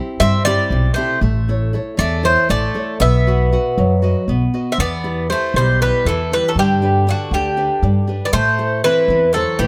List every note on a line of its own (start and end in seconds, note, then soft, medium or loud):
0.00 0.34 C4 medium
0.00 0.34 E4 soft
0.00 0.35 G4 medium
0.20 0.56 G2 medium
0.20 0.70 G3 medium
0.20 0.44 C4 medium
0.20 0.45 E5 loud
0.45 0.93 G3 medium
0.45 0.87 C4 soft
0.45 0.87 E4 soft
0.45 0.87 G4 medium
0.45 0.93 D5 loud
0.70 0.88 B1 medium
0.70 1.21 C3 medium
0.94 1.20 A3 medium
0.94 1.18 C4 soft
0.94 1.18 G4 medium
0.94 1.19 C5 medium
0.98 1.17 E4 soft
1.21 1.75 A1 loud
1.21 1.72 A3 medium
1.49 1.72 E4 soft
1.49 1.73 A4 soft
1.49 1.74 C#5 medium
1.73 2.14 E4 medium
1.73 2.14 A4 soft
1.73 2.15 C#5 medium
1.97 2.34 E2 medium
1.97 2.47 E3 medium
1.97 2.23 A3 medium
1.97 2.25 D5 medium
2.23 2.48 A3 medium
2.23 2.64 E4 medium
2.23 2.64 A4 soft
2.23 2.50 C5 medium
2.23 2.65 C#5 medium
2.49 2.67 A1 medium
2.49 2.99 A3 medium
2.49 2.97 A3 medium
2.49 3.01 D5 medium
2.74 2.95 E4 soft
2.74 2.95 A4 soft
2.74 2.95 C#5 medium
3.00 3.54 B1 loud
3.00 4.23 B3 medium
3.00 3.50 B3 medium
3.00 4.24 E5 medium
3.27 3.51 F#4 soft
3.27 3.52 B4 soft
3.27 3.52 F#5 medium
3.52 3.93 F#4 soft
3.52 3.93 B4 soft
3.52 3.93 F#5 medium
3.78 4.13 F#2 medium
3.78 4.27 F#3 medium
4.02 4.43 F#4 soft
4.02 4.44 B4 soft
4.02 4.44 D#5 medium
4.28 4.46 B1 medium
4.28 4.78 B3 medium
4.54 4.74 F#4 soft
4.54 4.74 B4 soft
4.54 4.74 D#5 soft
4.72 4.78 C4 medium
4.72 4.79 E5 medium
4.78 5.32 E2 medium
4.78 5.28 E3 medium
4.78 5.27 B3 medium
4.78 5.27 D5 loud
5.04 5.28 E4 soft
5.04 5.29 G4 soft
5.04 5.29 B4 medium
5.30 5.55 A3 medium
5.30 5.70 E4 soft
5.30 5.70 G4 soft
5.30 5.71 B4 medium
5.30 5.55 C5 medium
5.54 5.90 B1 medium
5.54 6.05 B2 medium
5.54 5.80 G3 medium
5.54 5.79 C5 medium
5.81 6.05 G3 medium
5.81 6.21 E4 soft
5.81 6.22 G4 soft
5.81 6.22 B4 medium
5.81 6.05 B4 medium
6.05 6.41 E2 medium
6.05 6.55 E3 medium
6.05 6.31 E3 medium
6.05 6.32 A4 medium
6.32 6.48 G3 medium
6.32 6.52 E4 soft
6.32 6.52 G4 soft
6.32 6.52 B4 soft
6.32 6.49 B4 medium
6.48 6.55 F#3 medium
6.48 6.56 A4 medium
6.56 7.09 G2 medium
6.56 7.05 D3 medium
6.56 7.06 G3 medium
6.56 7.10 G4 medium
6.82 7.06 D4 soft
6.82 7.06 G4 soft
6.82 7.06 B4 medium
7.07 7.31 D3 medium
7.07 7.48 D4 soft
7.07 7.34 F#4 medium
7.07 7.48 G4 soft
7.07 7.48 B4 medium
7.31 7.67 D2 medium
7.31 7.82 D3 medium
7.31 8.05 D3 medium
7.31 8.05 G4 medium
7.57 7.98 D4 soft
7.57 7.98 G4 soft
7.57 7.98 B4 medium
7.82 8.18 G2 medium
7.82 8.32 G3 medium
8.08 8.28 D4 soft
8.08 8.28 G4 soft
8.08 8.29 B4 medium
8.25 8.32 B3 medium
8.25 8.33 D5 medium
8.33 8.86 A2 medium
8.33 8.80 A3 loud
8.33 8.83 A3 medium
8.33 8.84 C5 loud
8.58 8.83 E4 soft
8.58 8.84 A4 soft
8.58 8.99 C5 medium
8.84 9.31 E3 medium
8.84 9.25 C4 medium
8.84 9.24 E4 soft
8.84 9.25 A4 soft
8.84 9.33 B4 medium
9.08 9.44 E2 medium
9.08 9.58 E3 medium
9.33 9.57 F#3 medium
9.33 9.67 E4 soft
9.33 9.60 A4 medium
9.33 9.67 A4 soft
9.33 9.67 C5 medium
9.59 9.67 A2 medium
9.59 9.67 E3 medium
9.59 9.67 A3 medium
9.59 9.67 G4 medium